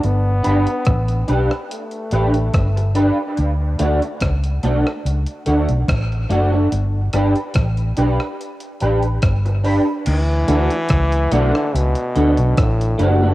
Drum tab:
CC |----------------|----------------|----------------|x---------------|
HH |x-xxxxx-xxxxxxx-|x-xxxxx-xxxxxxx-|x-xxxxx-xxxxxxo-|x-xxxxx-xxxxxxx-|
SD |----r--r----r---|----r--r----r---|--r-r--r----r---|----r--r----r---|
BD |----o-------o---|----o-------o---|----o-------o---|----o-------o---|